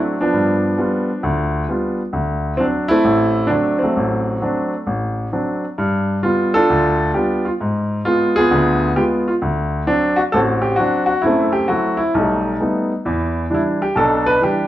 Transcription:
0.00 0.18 F#3 soft
0.00 0.14 A3 medium
0.00 0.18 C4 soft
0.00 0.19 D4 medium
0.21 1.96 F3 medium
0.21 0.77 B3 medium
0.21 1.96 D4 medium
0.33 0.72 G2 medium
0.78 1.09 G3 medium
0.78 1.09 B3 soft
0.78 1.09 F4 medium
1.23 1.62 D2 medium
1.69 1.99 G3 soft
1.69 2.00 B3 soft
1.69 2.00 F4 medium
2.13 2.52 D2 medium
2.57 2.90 F#3 medium
2.57 2.64 C4 medium
2.57 2.91 D4 medium
2.88 3.77 A3 medium
2.88 3.50 C4 medium
2.88 3.52 E4 loud
3.04 3.44 A1 medium
3.47 3.81 F#3 soft
3.47 3.50 D4 medium
3.51 3.77 C4 soft
3.51 3.82 D4 medium
3.79 4.41 C4 medium
3.83 4.40 F#3 medium
3.83 5.60 A3 medium
3.97 4.35 A1 medium
4.42 4.73 F#3 medium
4.42 4.73 C4 soft
4.42 4.73 D4 medium
4.87 5.26 A1 medium
5.33 5.63 F#3 soft
5.33 5.63 C4 soft
5.33 5.64 D4 soft
5.78 6.17 G2 medium
6.23 6.54 G3 medium
6.23 6.54 B3 soft
6.23 6.53 F4 medium
6.54 7.41 D4 medium
6.54 7.14 F4 medium
6.54 7.11 A4 loud
6.70 7.08 D2 medium
7.14 7.46 G3 soft
7.14 7.46 B3 soft
7.14 7.44 F4 medium
7.14 7.45 G4 medium
7.45 7.50 F4 medium
7.61 7.99 G#2 medium
8.05 8.36 G#3 soft
8.05 8.36 B3 soft
8.05 8.35 F4 medium
8.36 8.95 B3 medium
8.36 8.96 F4 medium
8.36 8.92 G#4 loud
8.51 8.90 D2 medium
8.51 8.90 D3 medium
8.96 9.28 G#3 soft
8.96 9.28 B3 soft
8.96 9.26 F4 medium
8.96 9.03 G4 medium
9.28 9.33 F4 medium
9.42 9.81 D2 medium
9.87 10.18 F#3 medium
9.87 10.18 C4 soft
9.87 10.17 D4 medium
10.16 10.21 F#4 medium
10.32 10.72 A1 medium
10.32 10.78 C4 medium
10.32 10.75 F#4 medium
10.32 10.39 A4 medium
10.62 10.78 G4 medium
10.76 11.09 F#3 soft
10.76 11.10 C4 soft
10.76 11.10 D4 medium
10.76 11.05 F#4 medium
11.06 11.23 F#4 medium
11.22 11.62 F#2 medium
11.22 11.50 E4 medium
11.26 11.67 A3 medium
11.26 12.11 C4 medium
11.53 11.67 G4 medium
11.68 11.99 F#3 soft
11.68 12.00 A3 soft
11.68 11.96 E4 medium
11.68 11.99 F#4 medium
11.97 12.12 E4 medium
12.14 12.53 B1 medium
12.14 12.59 D#4 medium
12.19 12.58 G3 soft
12.19 12.58 A3 soft
12.60 12.91 G3 soft
12.60 12.91 A3 soft
12.60 12.91 B3 soft
12.60 12.91 D#4 medium
13.05 13.44 E2 medium
13.05 13.44 E3 medium
13.50 13.81 E3 soft
13.50 13.81 G3 soft
13.50 13.81 D4 medium
13.54 13.61 E4 medium
13.82 13.97 G4 medium
13.95 14.35 B1 medium
13.95 14.34 B2 medium
13.95 14.40 D4 medium
13.95 14.24 A4 medium
14.26 14.40 B4 medium
14.41 14.67 E3 soft
14.41 14.67 G3 soft
14.41 14.67 D4 medium
14.41 14.67 G4 medium

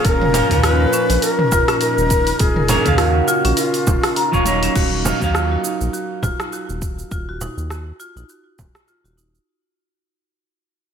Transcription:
0.00 4.71 A#2 medium
0.00 0.30 F3 medium
0.00 0.31 A#3 medium
0.00 0.31 C#4 medium
0.00 4.71 C#4 medium
0.00 0.31 F4 loud
0.05 0.42 D#1 loud
0.05 4.71 D#4 medium
0.05 0.21 A#4 medium
0.05 0.64 A#4 loud
0.05 kick loud
0.05 open hi-hat medium
0.05 cabasa soft
0.22 mid tom medium
0.32 0.46 F3 medium
0.32 0.46 A#3 medium
0.32 0.47 C#4 medium
0.32 0.47 F4 medium
0.32 open hi-hat medium
0.32 frame drum medium
0.32 cabasa medium
0.49 0.86 D#2 medium
0.49 2.66 A#2 loud
0.49 2.65 F3 loud
0.49 2.67 C#4 medium
0.49 2.67 F4 loud
0.49 kick medium
0.49 mid tom medium
0.49 open hi-hat soft
0.49 cabasa soft
0.64 0.79 F4 medium
0.64 1.24 B4 loud
0.64 cross-stick medium
0.64 open hi-hat medium
0.64 cabasa soft
0.80 0.88 A#4 medium
0.93 1.09 C#4 medium
0.93 cabasa medium
1.10 1.18 A#1 loud
1.10 open hi-hat soft
1.10 cabasa soft
1.22 1.39 A#4 medium
1.22 1.80 A#4 loud
1.22 open hi-hat medium
1.22 cabasa soft
1.39 mid tom medium
1.52 1.63 D#1 medium
1.52 1.68 F4 loud
1.52 kick loud
1.52 frame drum medium
1.52 cabasa medium
1.68 1.81 C#4 medium
1.68 cross-stick medium
1.68 open hi-hat soft
1.68 cabasa soft
1.81 2.42 A#4 loud
1.81 1.97 A#4 medium
1.81 open hi-hat soft
1.81 cabasa soft
1.98 2.33 D#1 loud
1.98 cabasa soft
2.10 kick loud
2.10 open hi-hat soft
2.10 cabasa medium
2.27 open hi-hat soft
2.27 cabasa soft
2.39 2.78 D#1 loud
2.39 2.55 F4 medium
2.39 3.00 G#4 loud
2.39 kick loud
2.39 open hi-hat medium
2.39 cabasa soft
2.56 2.64 A#4 medium
2.56 mid tom medium
2.68 2.83 F3 loud
2.68 2.84 A#3 medium
2.68 2.85 C#4 medium
2.68 2.84 C#4 medium
2.68 2.84 A#4 loud
2.68 open hi-hat medium
2.68 frame drum medium
2.68 cabasa medium
2.84 3.22 D#2 medium
2.84 4.29 C#3 medium
2.84 4.29 A#3 medium
2.84 4.30 C#4 loud
2.84 4.31 F5 loud
2.84 kick medium
2.84 mid tom medium
2.84 open hi-hat soft
2.84 cabasa soft
2.98 3.59 F#4 loud
2.98 3.15 A#4 medium
2.98 cross-stick medium
2.98 open hi-hat medium
2.98 cabasa soft
3.28 3.44 F4 loud
3.28 cabasa medium
3.45 3.53 A#1 loud
3.45 3.57 C#4 medium
3.45 open hi-hat soft
3.45 cabasa soft
3.57 4.46 F4 medium
3.57 3.73 A#4 medium
3.57 open hi-hat medium
3.57 cabasa soft
3.74 open hi-hat soft
3.74 cabasa soft
3.87 3.99 D#1 medium
3.87 kick loud
3.87 frame drum medium
3.87 cabasa medium
4.04 cross-stick medium
4.04 open hi-hat soft
4.04 cabasa soft
4.16 4.32 A#5 medium
4.16 open hi-hat medium
4.16 cabasa soft
4.32 4.69 D#1 medium
4.32 4.42 F3 loud
4.32 4.43 A#3 medium
4.32 4.43 C#4 loud
4.32 4.43 F4 loud
4.32 4.45 C#6 medium
4.32 kick medium
4.32 cabasa soft
4.45 5.01 F#3 loud
4.45 5.02 A#3 medium
4.45 5.02 D#4 medium
4.45 5.02 F4 loud
4.45 4.62 C#5 medium
4.45 open hi-hat soft
4.45 cabasa medium
4.63 4.75 C#4 medium
4.63 open hi-hat soft
4.63 cabasa soft
4.76 5.13 D#1 loud
4.76 4.91 F#4 medium
4.76 kick loud
4.76 crash medium
4.76 cabasa soft
5.04 5.17 F#3 medium
5.04 5.18 A#3 medium
5.04 5.18 D#4 medium
5.04 5.18 F4 medium
5.04 frame drum medium
5.04 cabasa medium
5.20 5.57 D#2 medium
5.20 7.36 F#3 loud
5.20 7.37 A#3 medium
5.20 7.38 D#4 medium
5.20 7.38 F5 loud
5.20 kick medium
5.20 cabasa soft
5.35 5.50 F4 medium
5.35 cross-stick medium
5.35 cabasa soft
5.51 5.58 F#4 medium
5.64 5.80 D#4 medium
5.64 cabasa medium
5.81 5.89 A#1 loud
5.81 cabasa soft
5.93 6.09 F#4 medium
5.93 cabasa soft
6.23 6.34 D#1 medium
6.23 6.39 F4 medium
6.23 kick loud
6.23 frame drum medium
6.23 cabasa medium
6.40 6.52 D#4 medium
6.40 cross-stick medium
6.40 cabasa soft
6.53 6.68 F#4 medium
6.53 cabasa soft
6.69 7.04 D#1 medium
6.69 cabasa soft
6.82 kick loud
6.82 cabasa medium
6.99 cabasa soft
7.11 7.49 D#1 loud
7.11 7.26 F4 medium
7.11 kick loud
7.11 cabasa soft
7.29 7.35 F#4 medium
7.41 7.57 D#4 medium
7.41 frame drum medium
7.41 cabasa medium
7.57 7.92 D#2 medium
7.57 cabasa soft
7.70 7.86 F#4 medium
7.70 cross-stick medium
7.70 cabasa soft
8.00 8.15 F4 medium
8.00 cabasa medium
8.16 8.24 A#1 loud
8.16 8.28 D#4 medium
8.16 cabasa soft
8.29 8.45 F#4 medium
8.29 cabasa soft
8.59 8.69 D#1 medium
8.59 kick loud
8.59 frame drum medium
8.59 cabasa medium
8.75 cross-stick medium
8.75 cabasa soft
8.88 9.03 F4 medium
8.88 cabasa soft
9.04 9.39 D#1 medium
9.04 9.11 F#4 medium
9.04 cabasa soft
9.17 9.33 D#4 medium
9.17 cabasa medium
9.35 cabasa soft

